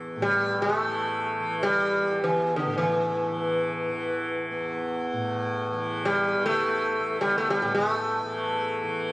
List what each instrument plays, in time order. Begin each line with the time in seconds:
Already playing: tanpura E2 A2 E3
0.16 tanpura A2
0.22 sitar G3
0.62 sitar A3
0.77 tanpura E3
1.40 tanpura E3
1.63 sitar G3
2.02 tanpura E2
2.24 sitar E3
2.56 sitar D3
2.64 tanpura A2
2.78 sitar E3
3.25 tanpura E3
3.88 tanpura E3
4.50 tanpura E2
5.13 tanpura A2
5.73 tanpura E3
6.05 sitar G3
6.36 tanpura E3
6.46 sitar A3
6.99 tanpura E2
7.21 sitar G3
7.38 sitar A3
7.50 sitar G3
7.61 tanpura A2, sitar G3
7.75 sitar A3
8.22 tanpura E3
8.83 tanpura E3